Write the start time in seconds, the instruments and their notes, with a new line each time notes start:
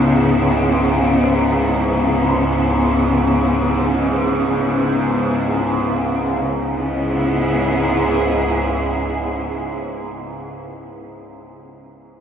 Already playing: synth drone C#2 G#2, cello section C#3 B3 E4 G#4
6.40 synth drone C#2 G#2, cello section C#3
6.61 cello section B3
6.80 cello section E4
6.95 cello section G#4